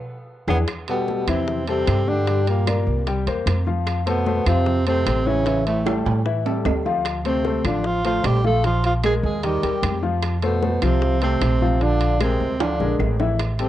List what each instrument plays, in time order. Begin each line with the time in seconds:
0.48 upright bass E2, tenor saxophone B3, grand piano D4 E4 G#4, high bongo, low conga, high timbale, claves
0.68 high bongo, high conga, high timbale, claves
0.88 trombone B2, grand piano G3 G4 A4, tenor saxophone B3, high conga, high timbale
1.08 grand piano G3 G4 A4, high bongo, high conga
1.27 upright bass E2, trombone C3, grand piano E3 E4 E5, tenor saxophone C4, high conga, low conga, high timbale, claves
1.48 high bongo, high conga, low conga
1.67 trombone C3, grand piano G3 G4 A4, tenor saxophone C4, high timbale
1.87 upright bass G2, high bongo, low bongo, high conga, high timbale, claves
2.07 trombone D3, grand piano G3 G4 G5, tenor saxophone D4, high conga
2.27 grand piano G3 G4 G5, high bongo, high conga, high timbale
2.47 trombone A#2, tenor saxophone A#3, high bongo, high conga, high timbale
2.67 grand piano A#3 A#4 D5, high bongo, high conga, high timbale, claves
2.87 upright bass C2
3.07 grand piano G3 G4 G5, high bongo, high conga, high timbale
3.27 upright bass E2, grand piano A#3 A#4 C5, high bongo, high conga, high timbale
3.46 upright bass F2, high bongo, low bongo, high conga, high timbale, claves
3.67 grand piano F3 F4 F5, high bongo, high conga
3.87 high bongo, high conga, high timbale, claves
4.06 trombone B2, grand piano A3 A4 C5, tenor saxophone B3, high conga, high timbale
4.26 grand piano A3 A4 C5, high bongo, high conga
4.46 upright bass F2, trombone C3, grand piano F3 F4 F5, tenor saxophone C4, high conga, low conga, high timbale, claves
4.66 high bongo, high conga, low conga
4.87 trombone C3, grand piano A3 A4 C5, tenor saxophone C4, high conga, high timbale
5.06 upright bass A1, high bongo, low bongo, high timbale, claves
5.26 trombone C#3, grand piano E3 E4 E5, tenor saxophone C#4, high conga
5.46 grand piano E3 E4 E5, high bongo, high timbale
5.66 trombone A2, tenor saxophone A3, high bongo, high conga, high timbale
5.86 grand piano G3 G4 A4, high bongo, high conga, high timbale, claves
6.06 upright bass A2, high timbale
6.26 grand piano E3 E4 E5, high bongo, high conga
6.45 grand piano G3 G4 A4, high bongo, high conga, low timbale
6.65 upright bass D2, high bongo, low bongo, high conga, low timbale, claves
6.85 grand piano F3 F4 F5, high bongo, low timbale
7.05 high bongo, high conga, high timbale, claves
7.25 trombone C3, grand piano A3 A4 C5, tenor saxophone C4, high conga, high timbale
7.45 grand piano A3 A4 C5, high bongo, high conga
7.64 upright bass A1, trombone D3, grand piano F3 F4 F5, tenor saxophone D4, high conga, low conga, high timbale, claves
7.84 trombone F3, tenor saxophone F4, high bongo
8.05 trombone F3, grand piano A3 A4 C5, tenor saxophone F4, high conga, high timbale
8.24 upright bass A#1, trombone G3, tenor saxophone G4, high bongo, low bongo, high timbale, low timbale, claves
8.44 grand piano F3 F4 F5, trombone A3, tenor saxophone A4, high conga
8.64 grand piano F3 F4 F5, trombone F3, tenor saxophone F4, high bongo, high timbale
8.84 trombone F3, tenor saxophone F4, high bongo, high conga, high timbale
9.03 grand piano G#3 G#4 A#4, trombone G#3, tenor saxophone G#4, high bongo, high conga, high timbale, claves
9.23 upright bass D#2, trombone G#3, tenor saxophone G#4
9.43 grand piano D#3 D#4 D#5, trombone G3, tenor saxophone G4, high bongo, high conga, high timbale
9.63 upright bass D#2, grand piano G3 G4 A#4, high bongo, high conga, high timbale
9.82 upright bass F2, high bongo, low bongo, high conga, high timbale, claves
10.03 grand piano F3 F4 F5, high bongo, high conga
10.22 high bongo, high conga, high timbale, claves
10.42 trombone B2, grand piano A3 A4 C5, tenor saxophone B3, high conga, high timbale
10.62 grand piano A3 A4 C5, high bongo, high conga
10.82 upright bass C2, trombone C3, grand piano F3 F4 F5, tenor saxophone C4, high conga, low conga, high timbale, claves
11.02 high bongo, high conga, low conga
11.22 trombone C3, grand piano A3 A4 C5, tenor saxophone C4, high timbale
11.41 upright bass A#1, high bongo, low bongo, high timbale, claves
11.61 grand piano F3 F4 F5, high conga
11.81 trombone D3, grand piano F3 F4 F5, tenor saxophone D4, high bongo, high conga, high timbale
12.01 high bongo, high conga, high timbale
12.20 trombone C3, grand piano G#3 G#4 A#4, tenor saxophone C4, high bongo, high conga, high timbale, claves
12.40 upright bass D2, high conga
12.60 trombone D3, grand piano F3 F4 F5, tenor saxophone D4, high bongo, high timbale
12.80 upright bass A#1, grand piano G#3 G#4 A#4, high bongo, low conga
12.99 upright bass A1, low bongo, low conga, low timbale, claves
13.20 grand piano E3 E4 E5, low bongo, low conga, low timbale
13.39 high bongo, high conga, high timbale, claves
13.59 grand piano G3 G4 A4, tenor saxophone C4, high conga, high timbale